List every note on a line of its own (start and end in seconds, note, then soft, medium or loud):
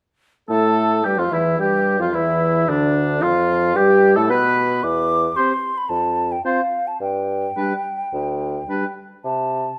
0.49 1.07 A2 medium
0.49 1.01 A3 medium
0.49 1.06 A4 medium
0.49 1.01 A4 medium
0.49 1.07 A5 medium
1.04 1.18 G2 soft
1.04 1.20 G3 soft
1.04 1.20 G4 medium
1.04 1.11 G4 medium
1.04 1.21 G5 medium
1.18 1.25 F2 soft
1.18 1.31 F3 soft
1.18 1.24 F4 soft
1.18 1.34 F4 medium
1.18 1.33 F5 medium
1.31 1.61 E2 soft
1.31 1.58 E3 medium
1.31 1.44 E4 medium
1.31 1.60 E4 medium
1.31 1.59 E5 medium
1.59 2.02 G2 soft
1.59 1.99 G3 medium
1.59 2.02 G4 medium
1.59 2.00 G4 medium
1.59 1.99 G5 medium
2.00 2.13 F2 soft
2.00 2.06 F3 soft
2.00 2.15 F4 soft
2.00 2.16 F4 soft
2.00 2.12 F5 medium
2.13 2.67 E2 medium
2.13 2.67 E3 medium
2.13 2.70 E4 medium
2.13 2.70 E5 medium
2.68 3.24 D2 medium
2.68 3.24 D3 medium
2.68 3.22 D4 medium
2.68 3.24 D4 medium
2.68 3.23 D5 medium
3.22 3.78 F2 medium
3.22 3.75 F3 medium
3.22 3.75 F4 medium
3.22 3.78 F4 medium
3.22 3.77 F5 medium
3.76 4.15 G2 medium
3.76 4.18 G3 medium
3.76 4.16 G4 medium
3.76 4.18 G4 medium
3.76 4.16 G5 medium
4.16 4.31 A2 medium
4.16 4.31 A3 medium
4.16 4.30 A4 medium
4.16 4.22 A4 medium
4.16 4.29 A5 medium
4.29 4.83 B2 medium
4.29 4.84 B3 medium
4.29 4.82 B4 medium
4.29 4.83 B4 medium
4.29 4.85 B5 medium
4.83 5.28 E2 medium
4.83 5.38 D6 medium
5.36 5.53 C4 soft
5.36 5.53 G4 medium
5.36 5.52 C5 soft
5.36 5.79 C6 medium
5.78 5.91 B5 medium
5.89 6.36 F2 medium
5.89 6.33 A5 medium
6.32 6.45 G5 medium
6.45 6.61 C4 soft
6.45 6.61 F4 soft
6.45 6.61 C5 soft
6.45 6.89 F5 medium
6.87 7.01 A5 medium
7.00 7.47 G2 medium
7.00 8.93 G5 medium
7.57 7.73 G3 soft
7.57 7.73 D4 soft
7.57 7.73 B4 soft
8.13 8.60 D2 soft
8.69 8.85 G3 soft
8.69 8.85 D4 soft
8.69 8.85 B4 soft
9.24 9.70 C3 soft
9.24 9.79 A5 medium